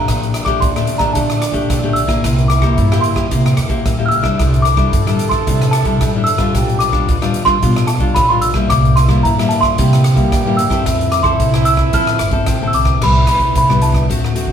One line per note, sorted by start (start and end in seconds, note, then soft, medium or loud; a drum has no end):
0.00 0.44 A3 medium
0.00 0.44 D4 medium
0.00 0.44 G4 medium
0.00 0.43 A#5 medium
0.08 0.54 A#1 medium
0.08 0.60 A#2 medium
0.08 2.20 D4 loud
0.08 kick medium
0.08 cross-stick medium
0.08 closed hi-hat medium
0.23 closed hi-hat soft
0.34 cross-stick medium
0.34 closed hi-hat soft
0.45 0.70 A3 medium
0.45 0.70 D4 medium
0.45 0.71 G4 medium
0.45 0.52 D6 medium
0.45 kick medium
0.45 cross-stick medium
0.60 1.08 D2 medium
0.60 1.13 A#2 medium
0.60 0.99 C6 medium
0.60 kick medium
0.60 closed hi-hat medium
0.76 0.98 A3 medium
0.76 0.98 D4 medium
0.76 0.98 G4 medium
0.76 cross-stick medium
0.76 closed hi-hat soft
0.87 closed hi-hat medium
0.98 1.10 A3 medium
0.98 1.10 D4 medium
0.98 1.10 G4 medium
0.98 1.05 A#5 medium
0.98 kick medium
0.98 cross-stick medium
0.98 closed hi-hat soft
1.13 1.67 A#2 medium
1.13 1.50 A#2 loud
1.13 1.41 A3 medium
1.13 1.41 D4 medium
1.13 1.41 G4 medium
1.13 1.91 A5 medium
1.13 kick medium
1.13 closed hi-hat medium
1.30 cross-stick medium
1.30 closed hi-hat soft
1.42 cross-stick medium
1.42 closed hi-hat medium
1.52 1.65 A#1 medium
1.52 1.77 A3 medium
1.52 1.78 D4 medium
1.52 1.78 G4 medium
1.52 kick medium
1.52 closed hi-hat soft
1.69 2.16 B1 medium
1.69 2.20 A#2 medium
1.69 kick medium
1.69 cross-stick medium
1.69 closed hi-hat medium
1.83 2.06 A3 medium
1.83 2.06 D4 medium
1.83 2.06 G4 medium
1.93 2.45 E6 medium
1.93 closed hi-hat soft
2.07 2.58 A#3 medium
2.07 2.58 E4 medium
2.07 2.59 G4 medium
2.07 kick medium
2.07 cross-stick medium
2.07 closed hi-hat soft
2.23 2.70 C2 loud
2.23 2.74 C3 medium
2.23 4.08 E4 loud
2.23 kick medium
2.23 cross-stick medium
2.23 closed hi-hat medium
2.38 closed hi-hat soft
2.48 3.05 D6 medium
2.48 cross-stick medium
2.48 closed hi-hat soft
2.62 2.85 A#3 medium
2.62 2.86 E4 medium
2.62 2.86 G4 medium
2.62 kick medium
2.62 cross-stick medium
2.77 3.24 G2 loud
2.77 3.28 G3 medium
2.77 kick medium
2.77 closed hi-hat medium
2.91 3.14 A#3 medium
2.91 3.14 E4 medium
2.91 3.14 G4 medium
2.91 cross-stick medium
2.91 closed hi-hat soft
3.01 3.99 C6 medium
3.01 closed hi-hat soft
3.15 3.26 A#3 medium
3.15 3.26 E4 medium
3.15 3.26 G4 medium
3.15 kick medium
3.15 cross-stick medium
3.31 3.82 C3 medium
3.31 3.54 C3 loud
3.31 3.56 A#3 medium
3.31 3.57 E4 medium
3.31 3.57 G4 medium
3.31 kick medium
3.31 closed hi-hat medium
3.46 cross-stick medium
3.46 closed hi-hat soft
3.57 3.82 E2 medium
3.57 cross-stick medium
3.57 closed hi-hat soft
3.69 3.93 A#3 medium
3.69 3.93 E4 medium
3.69 3.93 G4 medium
3.69 kick medium
3.69 closed hi-hat soft
3.85 4.10 D2 medium
3.85 4.21 G3 medium
3.85 kick medium
3.85 cross-stick medium
3.85 closed hi-hat medium
3.98 4.21 A#3 medium
3.98 4.21 E4 medium
3.98 4.21 G4 medium
4.06 4.66 E6 loud
4.06 4.12 F6 medium
4.11 4.36 C2 medium
4.11 closed hi-hat soft
4.22 4.73 G3 medium
4.22 4.74 D4 medium
4.22 4.74 E4 medium
4.22 kick medium
4.22 cross-stick medium
4.38 4.85 C2 loud
4.38 4.90 C3 medium
4.38 6.51 A4 loud
4.38 kick medium
4.38 cross-stick medium
4.38 closed hi-hat medium
4.54 closed hi-hat soft
4.62 5.28 D6 medium
4.62 cross-stick medium
4.62 closed hi-hat soft
4.76 4.91 G3 medium
4.76 5.01 D4 medium
4.76 5.01 E4 medium
4.76 kick medium
4.76 cross-stick medium
4.92 5.39 G2 medium
4.92 5.05 G3 medium
4.92 kick medium
4.92 closed hi-hat medium
5.06 5.43 G3 medium
5.06 5.43 D4 medium
5.06 5.43 E4 medium
5.06 cross-stick medium
5.06 closed hi-hat soft
5.19 closed hi-hat medium
5.29 5.69 C6 medium
5.29 kick medium
5.29 cross-stick medium
5.29 closed hi-hat soft
5.46 5.98 C3 medium
5.46 5.82 C3 loud
5.46 5.83 G3 medium
5.46 5.83 D4 medium
5.46 5.83 E4 medium
5.46 kick medium
5.46 closed hi-hat medium
5.62 cross-stick medium
5.62 closed hi-hat soft
5.71 6.28 A5 medium
5.71 cross-stick medium
5.71 closed hi-hat medium
5.83 5.96 C2 medium
5.83 6.00 G3 medium
5.83 6.09 D4 medium
5.83 6.09 E4 medium
5.83 kick medium
5.83 closed hi-hat soft
6.01 6.47 G2 medium
6.01 6.14 G3 medium
6.01 kick medium
6.01 cross-stick medium
6.01 closed hi-hat medium
6.15 6.37 G3 medium
6.15 6.37 D4 medium
6.15 6.38 E4 medium
6.24 6.81 E6 medium
6.24 closed hi-hat medium
6.38 6.89 G3 medium
6.38 6.89 D4 medium
6.38 6.90 F4 medium
6.38 kick medium
6.38 cross-stick medium
6.38 closed hi-hat soft
6.54 7.00 B1 loud
6.54 7.06 B2 medium
6.54 7.11 G4 loud
6.54 kick medium
6.54 cross-stick medium
6.54 closed hi-hat medium
6.69 closed hi-hat soft
6.79 7.44 D6 medium
6.79 cross-stick medium
6.79 closed hi-hat soft
6.92 7.16 G3 medium
6.92 7.17 D4 medium
6.92 7.17 F4 medium
6.92 kick medium
6.92 cross-stick medium
7.07 7.55 D2 medium
7.07 7.59 B2 medium
7.07 8.44 F4 medium
7.07 kick medium
7.07 closed hi-hat medium
7.21 7.44 G3 medium
7.21 7.44 D4 medium
7.21 7.45 F4 medium
7.21 cross-stick medium
7.21 closed hi-hat soft
7.34 closed hi-hat soft
7.45 7.56 G3 medium
7.45 7.56 D4 medium
7.45 7.57 F4 medium
7.45 7.85 C6 loud
7.45 kick medium
7.45 cross-stick medium
7.62 8.13 B2 medium
7.62 7.97 B2 loud
7.62 7.88 G3 medium
7.62 7.88 D4 medium
7.62 7.88 F4 medium
7.62 kick medium
7.62 closed hi-hat medium
7.76 cross-stick medium
7.76 closed hi-hat soft
7.87 8.13 A5 medium
7.87 cross-stick medium
7.87 closed hi-hat medium
7.98 8.12 B1 medium
7.98 8.24 G3 medium
7.98 8.24 D4 medium
7.98 8.25 F4 medium
7.98 kick medium
7.98 closed hi-hat soft
8.15 8.62 B1 medium
8.15 8.68 B2 medium
8.15 8.29 B5 medium
8.15 kick medium
8.15 cross-stick medium
8.15 closed hi-hat medium
8.29 8.53 G3 medium
8.29 8.53 D4 medium
8.29 8.53 F4 medium
8.29 8.35 C6 medium
8.42 8.54 E6 medium
8.42 closed hi-hat medium
8.54 9.05 G3 medium
8.54 9.05 A#3 medium
8.54 9.06 E4 medium
8.54 kick medium
8.54 cross-stick medium
8.70 9.16 C2 loud
8.70 9.22 C3 medium
8.70 9.80 E4 loud
8.70 8.98 D6 loud
8.70 kick medium
8.70 cross-stick medium
8.70 closed hi-hat medium
8.85 closed hi-hat soft
8.96 9.22 C6 medium
8.96 cross-stick medium
8.96 closed hi-hat soft
9.08 9.32 G3 medium
9.08 9.32 A#3 medium
9.08 9.33 E4 medium
9.08 kick medium
9.08 cross-stick medium
9.23 9.76 G2 medium
9.23 9.71 G2 medium
9.23 9.36 A#5 medium
9.23 kick medium
9.23 closed hi-hat medium
9.38 9.74 G3 medium
9.38 9.74 A#3 medium
9.38 9.75 E4 medium
9.38 cross-stick medium
9.38 closed hi-hat soft
9.49 9.64 A5 medium
9.49 closed hi-hat medium
9.61 10.60 C6 medium
9.61 kick medium
9.61 cross-stick medium
9.61 closed hi-hat soft
9.78 10.30 C3 medium
9.78 10.13 C3 loud
9.78 10.04 G3 medium
9.78 10.04 A#3 medium
9.78 10.04 E4 medium
9.78 10.88 G4 loud
9.78 kick medium
9.78 closed hi-hat medium
9.93 cross-stick medium
9.93 closed hi-hat soft
10.04 cross-stick medium
10.04 closed hi-hat medium
10.14 10.28 C2 medium
10.14 10.40 G3 medium
10.14 10.40 A#3 medium
10.14 10.40 E4 medium
10.14 kick medium
10.14 closed hi-hat soft
10.32 10.83 G2 medium
10.32 10.78 G2 medium
10.32 kick medium
10.32 cross-stick medium
10.32 closed hi-hat medium
10.46 10.69 G3 medium
10.46 10.69 A#3 medium
10.46 10.69 E4 medium
10.57 11.14 E6 medium
10.57 closed hi-hat medium
10.70 11.21 C4 medium
10.70 11.21 E4 medium
10.70 11.21 A4 medium
10.70 kick medium
10.70 cross-stick medium
10.70 closed hi-hat soft
10.86 11.32 F2 loud
10.86 11.37 F3 medium
10.86 12.48 E4 loud
10.86 kick medium
10.86 cross-stick medium
10.86 closed hi-hat medium
11.01 closed hi-hat soft
11.12 11.26 D6 medium
11.12 cross-stick medium
11.12 closed hi-hat medium
11.23 11.48 C4 medium
11.23 11.49 E4 medium
11.23 11.48 A4 medium
11.23 11.66 C6 loud
11.23 kick medium
11.23 cross-stick medium
11.40 11.86 C2 loud
11.40 11.91 C3 medium
11.40 kick medium
11.40 closed hi-hat medium
11.54 11.90 C4 medium
11.54 11.90 E4 medium
11.54 11.90 A4 medium
11.54 cross-stick medium
11.54 closed hi-hat soft
11.65 11.78 E6 loud
11.65 closed hi-hat medium
11.77 kick medium
11.77 cross-stick medium
11.93 12.45 F3 medium
11.93 12.17 F3 loud
11.93 12.19 C4 medium
11.93 12.19 E4 medium
11.93 12.19 A4 medium
11.93 12.71 F6 loud
11.93 kick medium
11.93 closed hi-hat medium
12.07 cross-stick medium
12.07 closed hi-hat soft
12.19 12.45 G1 medium
12.19 cross-stick medium
12.19 closed hi-hat medium
12.31 12.56 C4 medium
12.31 12.56 E4 medium
12.31 12.56 A4 medium
12.31 kick medium
12.31 closed hi-hat soft
12.46 12.72 A1 medium
12.46 12.99 C3 medium
12.46 13.00 C4 medium
12.46 kick medium
12.46 cross-stick medium
12.46 closed hi-hat medium
12.62 12.98 C4 medium
12.62 12.98 E4 medium
12.62 12.98 A4 medium
12.68 12.75 E6 medium
12.73 12.99 C2 medium
12.73 13.00 D6 medium
12.73 closed hi-hat soft
12.85 kick medium
12.85 cross-stick medium
13.01 13.25 C2 loud
13.01 13.53 C3 medium
13.01 13.24 G3 medium
13.01 13.25 B3 medium
13.01 14.05 E4 loud
13.01 13.25 E4 medium
13.01 13.28 B5 medium
13.01 kick medium
13.01 cross-stick medium
13.01 crash medium
13.26 13.64 G3 soft
13.26 13.64 B3 soft
13.26 13.64 E4 medium
13.26 13.54 B5 medium
13.26 cross-stick medium
13.26 closed hi-hat soft
13.37 13.51 C2 medium
13.37 kick medium
13.37 closed hi-hat soft
13.55 14.10 C2 loud
13.55 14.07 G2 medium
13.55 13.84 B5 medium
13.55 kick medium
13.55 closed hi-hat medium
13.69 14.05 G3 medium
13.69 14.06 B3 medium
13.69 14.06 E4 medium
13.69 cross-stick medium
13.82 14.52 A5 medium
13.82 closed hi-hat soft
13.94 kick medium
13.94 cross-stick medium
13.94 closed hi-hat soft
14.09 14.44 D2 loud
14.09 14.52 D3 medium
14.09 14.32 A3 medium
14.09 14.33 C4 medium
14.09 14.52 F#4 loud
14.09 14.33 F#4 medium
14.09 kick medium
14.09 closed hi-hat medium
14.24 cross-stick medium
14.35 14.52 A3 medium
14.35 14.52 C4 medium
14.35 14.52 F#4 medium
14.35 closed hi-hat medium
14.46 14.52 D2 medium
14.46 kick medium